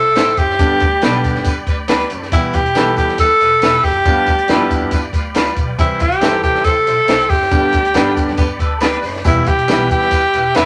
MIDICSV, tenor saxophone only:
0, 0, Header, 1, 2, 480
1, 0, Start_track
1, 0, Key_signature, 1, "major"
1, 0, Tempo, 432900
1, 656, Time_signature, 4, 2, 24, 8
1, 11813, End_track
2, 0, Start_track
2, 0, Title_t, "Tenor saxophone"
2, 0, Program_c, 0, 66
2, 0, Note_on_c, 0, 69, 116
2, 428, Note_on_c, 0, 67, 101
2, 445, Note_off_c, 0, 69, 0
2, 1862, Note_off_c, 0, 67, 0
2, 2584, Note_on_c, 0, 64, 93
2, 2827, Note_on_c, 0, 67, 110
2, 2843, Note_off_c, 0, 64, 0
2, 3299, Note_off_c, 0, 67, 0
2, 3305, Note_on_c, 0, 67, 88
2, 3524, Note_off_c, 0, 67, 0
2, 3548, Note_on_c, 0, 69, 119
2, 4262, Note_on_c, 0, 67, 98
2, 4279, Note_off_c, 0, 69, 0
2, 5698, Note_off_c, 0, 67, 0
2, 6427, Note_on_c, 0, 64, 95
2, 6673, Note_on_c, 0, 67, 106
2, 6690, Note_off_c, 0, 64, 0
2, 7128, Note_off_c, 0, 67, 0
2, 7135, Note_on_c, 0, 67, 100
2, 7374, Note_on_c, 0, 69, 115
2, 7390, Note_off_c, 0, 67, 0
2, 8094, Note_on_c, 0, 67, 105
2, 8111, Note_off_c, 0, 69, 0
2, 9535, Note_off_c, 0, 67, 0
2, 10281, Note_on_c, 0, 64, 100
2, 10513, Note_on_c, 0, 67, 114
2, 10529, Note_off_c, 0, 64, 0
2, 10985, Note_off_c, 0, 67, 0
2, 10994, Note_on_c, 0, 67, 115
2, 11716, Note_on_c, 0, 64, 98
2, 11733, Note_off_c, 0, 67, 0
2, 11813, Note_off_c, 0, 64, 0
2, 11813, End_track
0, 0, End_of_file